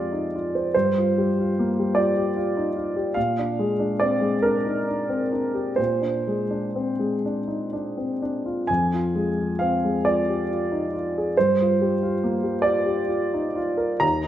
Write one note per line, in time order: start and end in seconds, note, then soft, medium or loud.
0.00 0.71 F2 soft
0.00 0.77 G#3 soft
0.00 0.76 C4 soft
0.00 0.35 F4 soft
0.00 0.76 G4 soft
0.00 0.74 D5 medium
0.00 0.76 F5 medium
0.00 0.76 G#5 soft
0.12 0.33 D#4 soft
0.35 0.67 F4 soft
0.55 0.73 C5 soft
0.74 3.13 G2 soft
0.74 1.97 C5 medium
0.98 1.29 F4 soft
1.18 1.50 G3 soft
1.39 1.70 F4 soft
1.59 1.90 A#3 soft
1.79 2.10 G3 soft
1.95 2.28 F4 soft
1.95 3.15 D5 medium
2.17 2.36 G4 soft
2.37 2.68 F4 soft
2.57 2.76 D#4 soft
2.77 3.08 F4 soft
2.96 3.16 G4 soft
3.14 5.74 A#2 soft
3.14 3.98 F5 medium
3.39 3.71 D4 soft
3.59 3.91 G#3 soft
3.79 4.12 D4 soft
4.00 4.34 C4 soft
4.00 4.42 D5 medium
4.21 4.55 G#3 soft
4.42 4.78 D4 soft
4.42 5.78 A#4 medium
4.66 4.86 D#4 soft
4.87 5.22 D4 soft
5.09 5.31 C4 soft
5.32 5.69 D4 soft
5.54 5.78 G4 soft
5.76 8.65 A#2 soft
5.76 7.23 C5 soft
6.02 6.41 D4 soft
6.27 6.66 G#3 soft
6.50 6.90 D4 soft
6.76 7.14 C4 soft
6.99 7.38 G#3 soft
7.26 7.64 D4 soft
7.48 7.72 D#4 soft
7.73 8.12 D4 soft
7.97 8.22 C4 soft
8.22 8.60 D4 soft
8.46 8.69 F4 soft
8.67 11.32 F2 soft
8.67 9.59 G#5 medium
8.94 9.29 F4 soft
9.15 9.51 G#3 soft
9.38 9.74 F4 soft
9.59 9.96 C4 soft
9.59 10.04 F5 medium
9.85 10.19 G#3 soft
10.05 10.41 F4 soft
10.05 11.35 D5 medium
10.29 10.50 G4 soft
10.51 10.84 F4 soft
10.72 10.93 D#4 soft
10.93 11.27 F4 soft
11.18 11.37 G#4 soft
11.37 14.00 G2 soft
11.37 12.63 C5 medium
11.61 11.92 F4 soft
11.82 12.13 G3 soft
12.03 12.34 F4 soft
12.24 12.55 A#3 soft
12.43 12.77 G3 soft
12.62 13.00 F4 soft
12.62 14.02 D5 medium
12.86 13.09 G4 soft
13.08 13.46 F4 soft
13.34 13.57 D#4 soft
13.56 13.93 F4 soft
13.77 14.01 A#4 soft
14.00 14.28 D#2 soft
14.00 14.28 A#5 medium
14.24 14.28 D#4 soft